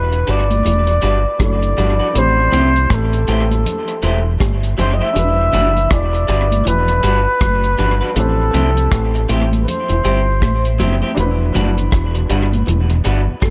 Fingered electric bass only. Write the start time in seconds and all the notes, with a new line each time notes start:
Already playing: E1
0.28 G1
0.66 E1
1.03 G1
1.40 F#1
1.78 G1
2.16 A1
2.53 C2
2.90 A1
3.28 A1
4.03 E1
4.41 G1
4.78 F#1
5.16 E1
5.53 F#1
5.91 E1
6.29 G1
6.66 E1
7.04 G1
7.41 F#1
7.79 G1
8.16 A1
8.54 C2
8.92 A1
9.30 A1
9.90 E1
10.05 G1
10.42 A1
10.80 F#1
11.17 E1
11.55 F#1
11.93 E1
12.30 G1
12.67 E1
13.05 G1
13.43 F#1